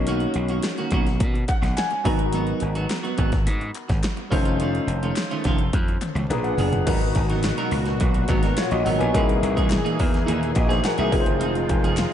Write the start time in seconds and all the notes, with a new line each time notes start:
Already playing: B1 C#4 D#4 F#4 A#4
0.07 D#3 A#3 C#4 F#4, closed hi-hat
0.20 closed hi-hat
0.34 B1, muted clean electric guitar stroke, closed hi-hat
0.48 D#3 A#3 C#4 F#4, closed hi-hat
0.63 muted clean electric guitar stroke, snare, clap, closed hi-hat
0.78 D#3 A#3 C#4 F#4, closed hi-hat
0.91 B1 D#3 A#3 C#4 F#4, kick, closed hi-hat
1.07 muted clean electric guitar stroke, snare, closed hi-hat
1.20 B2, muted clean electric guitar stroke, kick, closed hi-hat
1.34 muted clean electric guitar stroke, closed hi-hat
1.48 F#5, kick, clap, closed hi-hat
1.62 B1, muted clean electric guitar stroke, snare, closed hi-hat
1.77 G#5, snare, clap, closed hi-hat
1.91 muted clean electric guitar stroke, closed hi-hat
2.04 G#1 F#3 B3 D#4 F#4 A#4 A#5, kick, open hi-hat
2.19 muted clean electric guitar stroke, closed hi-hat
2.33 F#3 B3 D#4 F#4, closed hi-hat
2.47 closed hi-hat
2.60 G#1, muted clean electric guitar stroke, closed hi-hat
2.75 F#3 B3 D#4 F#4, closed hi-hat
2.89 muted clean electric guitar stroke, snare, clap, closed hi-hat
3.03 F#3 B3 D#4 F#4, closed hi-hat
3.17 G#1 F#3 B3 D#4 F#4, kick, closed hi-hat
3.32 muted clean electric guitar stroke, kick, snare, closed hi-hat
3.45 G#2, muted clean electric guitar stroke, closed hi-hat
3.60 muted clean electric guitar stroke, closed hi-hat
3.75 clap, closed hi-hat
3.88 G#1, muted clean electric guitar stroke, kick, snare, closed hi-hat
4.03 muted clean electric guitar stroke, snare, clap, closed hi-hat
4.17 muted clean electric guitar stroke, closed hi-hat
4.30 F1 D#3 A3 C#4 D#4 F4 A4 C5, kick, open hi-hat
4.45 D#3 A3 C#4 F4, closed hi-hat
4.60 D#3 A3 C#4 F4, closed hi-hat
4.75 closed hi-hat
4.87 F1, muted clean electric guitar stroke, closed hi-hat
5.03 D#3 A3 C#4 F4, closed hi-hat
5.16 muted clean electric guitar stroke, snare, clap, closed hi-hat
5.31 D#3 A3 C#4 F4, closed hi-hat
5.44 F1 D#3 A3 C#4 F4, kick, snare, closed hi-hat
5.58 muted clean electric guitar stroke, closed hi-hat
5.73 F2, muted clean electric guitar stroke, kick, closed hi-hat, high tom
5.88 muted clean electric guitar stroke, closed hi-hat
6.01 clap, closed hi-hat, mid tom
6.15 C#2, muted clean electric guitar stroke, closed hi-hat, mid tom
6.29 A#1 F3 D4 G#4 B4 A#5, clap, closed hi-hat, mid tom
6.44 F#5, muted clean electric guitar stroke, closed hi-hat
6.57 F#1 F3 B3 D4 G#4, floor tom, open hi-hat
6.73 muted clean electric guitar stroke, closed hi-hat, floor tom
6.85 G#1 A#2 B2 F#3 B3 D#4 F#4 A#4 B4, kick, closed hi-hat, crash
7.01 muted clean electric guitar stroke, closed hi-hat
7.15 G#1, muted clean electric guitar stroke, kick, closed hi-hat
7.30 F#3 B3 D#4 A#4, closed hi-hat
7.43 muted clean electric guitar stroke, snare, clap, closed hi-hat
7.58 F#3 B3 D#4 A#4, closed hi-hat
7.71 C#2, muted clean electric guitar stroke, snare, open hi-hat
7.86 muted clean electric guitar stroke, snare, closed hi-hat
8.00 B1, muted clean electric guitar stroke, kick, closed hi-hat
8.14 muted clean electric guitar stroke, closed hi-hat
8.28 G#1 F#3 B3 D#4 A#4, kick, clap, closed hi-hat
8.43 F#3 B3 D#4 A#4, snare, closed hi-hat
8.57 F4 C#5, muted clean electric guitar stroke, snare, clap, closed hi-hat
8.71 A#1 F#4 D#5, muted clean electric guitar stroke, closed hi-hat
8.85 G#1 F#3 B3 D#4 A#4 F#5, open hi-hat
8.99 A#1 F#3 B3 D#4 A#4 B4 G#5, closed hi-hat
9.13 C2 E3 A#3 D#4 E4 G#4 A#4, kick, closed hi-hat
9.29 muted clean electric guitar stroke, closed hi-hat
9.43 C2, muted clean electric guitar stroke, closed hi-hat
9.57 E3 A#3 D#4 G#4, kick, closed hi-hat
9.70 muted clean electric guitar stroke, snare, clap, closed hi-hat
9.85 E3 A#3 D#4 G#4, closed hi-hat
9.99 E2, muted clean electric guitar stroke, kick, open hi-hat
10.13 muted clean electric guitar stroke, snare, closed hi-hat
10.26 D#2 E3 A#3 D#4 G#4, closed hi-hat
10.41 muted clean electric guitar stroke, closed hi-hat
10.55 A#1 F#4 D#5, muted clean electric guitar stroke, kick, clap, closed hi-hat
10.69 E3 A#3 D#4 G#4 C5 G#5, snare, closed hi-hat
10.84 A#4 F#5, muted clean electric guitar stroke, snare, clap, closed hi-hat
10.98 C2 E3 A#3 D#4 G#4 E5, closed hi-hat
11.11 F1 D#3 F3 G#3 C4 D#4 F4 G#4 B4, kick, open hi-hat
11.20 C5
11.26 F#1, muted clean electric guitar stroke, closed hi-hat
11.40 F1 F3 C4 D#4 G#4, closed hi-hat
11.55 muted clean electric guitar stroke, closed hi-hat
11.69 F1, muted clean electric guitar stroke, kick, closed hi-hat
11.84 F3 C4 D#4 G#4, closed hi-hat
11.97 muted clean electric guitar stroke, snare, clap, closed hi-hat